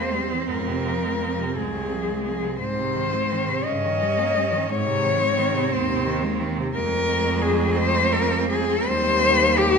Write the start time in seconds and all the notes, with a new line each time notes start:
Already playing: E2 A#3 C4 C5
0.13 G3
0.31 E3
0.49 F2 G#2 A#4
0.68 C3
0.86 F3
1.03 G#3
1.21 F3
1.39 C3
1.55 C2 G#2 G#4
1.74 C3
1.91 F3
2.08 G#3
2.25 F3 G#4
2.42 C3
2.59 G#2 C4 C5
2.78 C3
2.95 D#3
3.13 G#3
3.31 D#3
3.49 C3
3.65 G2 C#3 C#4 D#5
3.84 D#3
4.02 G3
4.18 A#3
4.36 G3
4.52 D#3
4.69 G#2 C4 C#5
4.86 C3
5.03 D#3
5.20 G#3
5.37 D#3
5.54 C3
5.72 D#2 G#2 C5
5.88 C3
6.05 D#3
6.22 G#3
6.39 D#3
6.57 C3
6.74 F2 G#3 C4 A#4
7.41 G#4
7.77 C5
8.12 A#4
8.49 G#4
8.87 D#2 G3 C5
9.58 G4